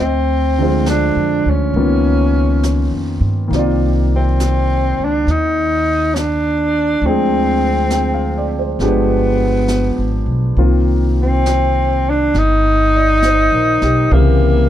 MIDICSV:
0, 0, Header, 1, 5, 480
1, 0, Start_track
1, 0, Key_signature, -3, "minor"
1, 0, Tempo, 882353
1, 1906, Time_signature, 4, 2, 24, 8
1, 7992, End_track
2, 0, Start_track
2, 0, Title_t, "Tenor saxophone"
2, 0, Program_c, 0, 66
2, 1, Note_on_c, 0, 60, 73
2, 474, Note_off_c, 0, 60, 0
2, 487, Note_on_c, 0, 62, 69
2, 816, Note_on_c, 0, 61, 77
2, 824, Note_off_c, 0, 62, 0
2, 1766, Note_off_c, 0, 61, 0
2, 2260, Note_on_c, 0, 60, 77
2, 2745, Note_on_c, 0, 62, 73
2, 2753, Note_off_c, 0, 60, 0
2, 2886, Note_on_c, 0, 63, 87
2, 2894, Note_off_c, 0, 62, 0
2, 3342, Note_on_c, 0, 61, 52
2, 3350, Note_off_c, 0, 63, 0
2, 3370, Note_on_c, 0, 62, 82
2, 3378, Note_off_c, 0, 61, 0
2, 3843, Note_on_c, 0, 60, 81
2, 3851, Note_off_c, 0, 62, 0
2, 4703, Note_off_c, 0, 60, 0
2, 4812, Note_on_c, 0, 59, 69
2, 5590, Note_off_c, 0, 59, 0
2, 6102, Note_on_c, 0, 60, 81
2, 6581, Note_on_c, 0, 62, 73
2, 6589, Note_off_c, 0, 60, 0
2, 6735, Note_on_c, 0, 63, 96
2, 6743, Note_off_c, 0, 62, 0
2, 7686, Note_on_c, 0, 58, 74
2, 7695, Note_off_c, 0, 63, 0
2, 7992, Note_off_c, 0, 58, 0
2, 7992, End_track
3, 0, Start_track
3, 0, Title_t, "Grand piano"
3, 0, Program_c, 1, 0
3, 92, Control_c, 1, 64, 127
3, 316, Note_on_c, 1, 50, 44
3, 323, Note_on_c, 1, 53, 38
3, 333, Note_on_c, 1, 56, 37
3, 336, Note_on_c, 1, 72, 38
3, 346, Note_on_c, 1, 65, 46
3, 946, Note_off_c, 1, 50, 0
3, 949, Note_off_c, 1, 53, 0
3, 954, Note_off_c, 1, 56, 0
3, 955, Control_c, 1, 64, 0
3, 956, Note_off_c, 1, 72, 0
3, 958, Note_on_c, 1, 58, 42
3, 958, Note_on_c, 1, 59, 41
3, 959, Note_off_c, 1, 65, 0
3, 959, Note_on_c, 1, 51, 44
3, 961, Note_on_c, 1, 61, 41
3, 967, Note_on_c, 1, 65, 49
3, 1067, Control_c, 1, 64, 127
3, 1884, Note_off_c, 1, 51, 0
3, 1892, Note_on_c, 1, 51, 45
3, 1897, Note_off_c, 1, 58, 0
3, 1906, Note_on_c, 1, 58, 42
3, 1911, Note_off_c, 1, 59, 0
3, 1912, Control_c, 1, 64, 0
3, 1913, Note_off_c, 1, 61, 0
3, 1915, Note_off_c, 1, 65, 0
3, 1921, Note_on_c, 1, 60, 42
3, 1935, Note_on_c, 1, 74, 43
3, 1952, Note_on_c, 1, 65, 52
3, 1995, Control_c, 1, 64, 127
3, 3817, Note_off_c, 1, 51, 0
3, 3824, Note_off_c, 1, 58, 0
3, 3831, Control_c, 1, 64, 0
3, 3832, Note_off_c, 1, 60, 0
3, 3836, Note_on_c, 1, 53, 44
3, 3838, Note_off_c, 1, 74, 0
3, 3838, Note_on_c, 1, 56, 42
3, 3841, Note_on_c, 1, 60, 42
3, 3841, Note_on_c, 1, 62, 42
3, 3843, Note_on_c, 1, 68, 50
3, 3847, Note_off_c, 1, 65, 0
3, 3914, Control_c, 1, 64, 127
3, 4316, Note_on_c, 1, 79, 35
3, 4428, Note_on_c, 1, 77, 42
3, 4542, Note_off_c, 1, 79, 0
3, 4557, Note_on_c, 1, 74, 41
3, 4636, Note_off_c, 1, 77, 0
3, 4672, Note_on_c, 1, 72, 43
3, 4697, Note_off_c, 1, 74, 0
3, 4783, Note_off_c, 1, 53, 0
3, 4787, Note_off_c, 1, 56, 0
3, 4790, Note_off_c, 1, 62, 0
3, 4791, Control_c, 1, 64, 0
3, 4792, Note_on_c, 1, 53, 50
3, 4793, Note_off_c, 1, 60, 0
3, 4794, Note_off_c, 1, 68, 0
3, 4795, Note_on_c, 1, 56, 46
3, 4795, Note_on_c, 1, 59, 47
3, 4798, Note_on_c, 1, 62, 44
3, 4800, Note_on_c, 1, 67, 55
3, 4836, Note_off_c, 1, 72, 0
3, 4893, Control_c, 1, 64, 127
3, 5751, Note_off_c, 1, 53, 0
3, 5753, Note_off_c, 1, 56, 0
3, 5753, Note_off_c, 1, 59, 0
3, 5754, Control_c, 1, 64, 0
3, 5755, Note_off_c, 1, 62, 0
3, 5756, Note_off_c, 1, 67, 0
3, 5756, Note_on_c, 1, 51, 43
3, 5757, Note_on_c, 1, 58, 41
3, 5758, Note_on_c, 1, 60, 38
3, 5760, Note_on_c, 1, 65, 50
3, 5855, Control_c, 1, 64, 127
3, 7050, Note_on_c, 1, 74, 38
3, 7210, Note_on_c, 1, 72, 40
3, 7293, Note_off_c, 1, 74, 0
3, 7368, Note_on_c, 1, 70, 38
3, 7510, Note_off_c, 1, 72, 0
3, 7531, Note_on_c, 1, 67, 46
3, 7612, Note_off_c, 1, 70, 0
3, 7671, Note_off_c, 1, 58, 0
3, 7675, Note_on_c, 1, 52, 44
3, 7676, Note_off_c, 1, 51, 0
3, 7677, Note_off_c, 1, 60, 0
3, 7677, Note_off_c, 1, 65, 0
3, 7679, Control_c, 1, 64, 0
3, 7679, Note_on_c, 1, 58, 42
3, 7686, Note_on_c, 1, 60, 42
3, 7691, Note_off_c, 1, 67, 0
3, 7694, Note_on_c, 1, 49, 42
3, 7699, Note_on_c, 1, 67, 54
3, 7776, Control_c, 1, 64, 127
3, 7992, Note_off_c, 1, 49, 0
3, 7992, Note_off_c, 1, 52, 0
3, 7992, Note_off_c, 1, 58, 0
3, 7992, Note_off_c, 1, 60, 0
3, 7992, Note_off_c, 1, 67, 0
3, 7992, End_track
4, 0, Start_track
4, 0, Title_t, "Upright bass"
4, 0, Program_c, 2, 32
4, 0, Note_on_c, 2, 38, 65
4, 605, Note_off_c, 2, 38, 0
4, 631, Note_on_c, 2, 41, 52
4, 778, Note_off_c, 2, 41, 0
4, 794, Note_on_c, 2, 38, 51
4, 939, Note_off_c, 2, 38, 0
4, 946, Note_on_c, 2, 37, 63
4, 1564, Note_off_c, 2, 37, 0
4, 1588, Note_on_c, 2, 41, 46
4, 1736, Note_off_c, 2, 41, 0
4, 1744, Note_on_c, 2, 43, 55
4, 1894, Note_off_c, 2, 43, 0
4, 1907, Note_on_c, 2, 36, 64
4, 2695, Note_off_c, 2, 36, 0
4, 2713, Note_on_c, 2, 37, 52
4, 2853, Note_off_c, 2, 37, 0
4, 2866, Note_on_c, 2, 39, 68
4, 3803, Note_off_c, 2, 39, 0
4, 3817, Note_on_c, 2, 38, 65
4, 4759, Note_off_c, 2, 38, 0
4, 4782, Note_on_c, 2, 31, 65
4, 5404, Note_off_c, 2, 31, 0
4, 5431, Note_on_c, 2, 32, 41
4, 5578, Note_off_c, 2, 32, 0
4, 5582, Note_on_c, 2, 35, 51
4, 5734, Note_off_c, 2, 35, 0
4, 5748, Note_on_c, 2, 36, 66
4, 6689, Note_off_c, 2, 36, 0
4, 6712, Note_on_c, 2, 31, 66
4, 7330, Note_off_c, 2, 31, 0
4, 7357, Note_on_c, 2, 34, 46
4, 7503, Note_off_c, 2, 34, 0
4, 7519, Note_on_c, 2, 35, 58
4, 7664, Note_off_c, 2, 35, 0
4, 7677, Note_on_c, 2, 36, 73
4, 7992, Note_off_c, 2, 36, 0
4, 7992, End_track
5, 0, Start_track
5, 0, Title_t, "Drums"
5, 468, Note_on_c, 9, 38, 35
5, 468, Note_on_c, 9, 44, 44
5, 523, Note_off_c, 9, 38, 0
5, 523, Note_off_c, 9, 44, 0
5, 950, Note_on_c, 9, 25, 34
5, 1432, Note_on_c, 9, 38, 35
5, 1432, Note_on_c, 9, 44, 43
5, 1487, Note_off_c, 9, 38, 0
5, 1487, Note_off_c, 9, 44, 0
5, 1919, Note_off_c, 9, 25, 0
5, 1919, Note_on_c, 9, 25, 31
5, 1919, Note_on_c, 9, 38, 24
5, 1973, Note_off_c, 9, 38, 0
5, 2393, Note_on_c, 9, 38, 34
5, 2393, Note_on_c, 9, 44, 51
5, 2447, Note_off_c, 9, 38, 0
5, 2447, Note_off_c, 9, 44, 0
5, 2871, Note_off_c, 9, 25, 0
5, 2871, Note_on_c, 9, 25, 30
5, 2871, Note_on_c, 9, 38, 21
5, 2925, Note_off_c, 9, 38, 0
5, 3349, Note_on_c, 9, 38, 37
5, 3349, Note_on_c, 9, 44, 51
5, 3404, Note_off_c, 9, 38, 0
5, 3404, Note_off_c, 9, 44, 0
5, 3823, Note_off_c, 9, 25, 0
5, 3823, Note_on_c, 9, 25, 35
5, 4299, Note_on_c, 9, 38, 35
5, 4299, Note_on_c, 9, 44, 47
5, 4354, Note_off_c, 9, 38, 0
5, 4354, Note_off_c, 9, 44, 0
5, 4785, Note_off_c, 9, 25, 0
5, 4785, Note_on_c, 9, 25, 30
5, 4785, Note_on_c, 9, 38, 22
5, 4839, Note_off_c, 9, 38, 0
5, 5267, Note_on_c, 9, 38, 37
5, 5267, Note_on_c, 9, 44, 41
5, 5321, Note_off_c, 9, 38, 0
5, 5321, Note_off_c, 9, 44, 0
5, 5752, Note_off_c, 9, 25, 0
5, 5752, Note_on_c, 9, 25, 29
5, 6233, Note_on_c, 9, 38, 37
5, 6233, Note_on_c, 9, 44, 45
5, 6288, Note_off_c, 9, 38, 0
5, 6288, Note_off_c, 9, 44, 0
5, 6715, Note_off_c, 9, 25, 0
5, 6715, Note_on_c, 9, 25, 28
5, 6715, Note_on_c, 9, 38, 23
5, 6769, Note_off_c, 9, 38, 0
5, 7194, Note_on_c, 9, 38, 35
5, 7194, Note_on_c, 9, 44, 41
5, 7248, Note_off_c, 9, 38, 0
5, 7248, Note_off_c, 9, 44, 0
5, 7516, Note_on_c, 9, 38, 24
5, 7570, Note_off_c, 9, 38, 0
5, 7679, Note_off_c, 9, 25, 0
5, 7679, Note_on_c, 9, 25, 33
5, 7992, Note_off_c, 9, 25, 0
5, 7992, End_track
0, 0, End_of_file